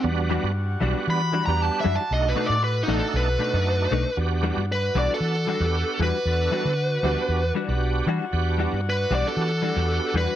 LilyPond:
<<
  \new Staff \with { instrumentName = "Horn section" } { \time 4/4 \key e \minor \tempo 4 = 116 << { <g fis' fis''>1 | <fis' a' fis''>1 | <fis' fis''>1~ | <fis' fis''>1~ |
<fis' fis''>1 | } \\ { d''1~ | d''1 | d''1~ | d''1~ |
d''1 | } >> }
  \new Staff \with { instrumentName = "Lead electric guitar" } { \time 4/4 \key e \minor r2 \tuplet 3/2 { b''4 ais''8 a''8 e''8 a''8 } | \tuplet 3/2 { dis''8 b'8 d''8 b'8 dis'8 a'8 } b'2 | r4 b'8 d''16 a'4.~ a'16 b'8~ | b'2~ b'8 r4. |
r4 b'8 d''16 a'4.~ a'16 b'8 | }
  \new Staff \with { instrumentName = "Tonewheel organ" } { \time 4/4 \key e \minor <g b d' fis'>4 r8 <g b d' fis'>8. r8 <g b d' g'>8. r8 | <a d' dis' fis'>4 r8 <a d' dis' a'>8. r8 <a d' dis' fis'>8. r8 | <b d' fis' g'>4 r8 <b d' fis' a'>8. r8 <b d' fis' g'>8. r8 | <b d' fis' a'>4 r8 <b d' fis' g'>8. r8 <b d' fis' g'>8. r8 |
<b d' fis' g'>4 r8 <b d' fis' g'>8. r8 <b d' fis' g'>8. r8 | }
  \new Staff \with { instrumentName = "Clean electric guitar" } { \time 4/4 \key e \minor r8 <e g d' fis'>8 r8 <e g d' fis'>8 r8 <e g d' fis'>8 r8 <e g d' fis'>8 | r8 <b, a d' dis'>8 r8 <b, a d' dis'>8 r8 <b, a d' dis'>8 r8 <b, a d' dis'>8 | r8 <e g d' fis'>8 r8 <e g d' fis'>8 r8 <e g d' fis'>8 r8 <e g d' fis'>8 | r8 <e g d' fis'>8 r8 <e g d' fis'>8 r8 <e g d' fis'>8 r8 <e g d' fis'>8 |
r8 <e g d' fis'>8 r8 <e g d' fis'>8 r8 <e g d' fis'>8 r8 <e g d' fis'>8 | }
  \new Staff \with { instrumentName = "Fingered electric bass" } { \clef bass \time 4/4 \key e \minor e,8. g,8. b,,16 r16 e8. e,8 r16 fis,16 r16 | b,,8 r16 a,8. a,,16 r16 b,,8 r16 fis,8. b,,16 r16 | e,8. g,8. b,,16 r16 e8. e,8 r16 e,16 r16 | e,8 r16 d8. d,16 r16 e,8 r16 b,,8. e16 r16 |
e,8. g,8. b,,16 r16 e8. e,8 r16 e,16 r16 | }
>>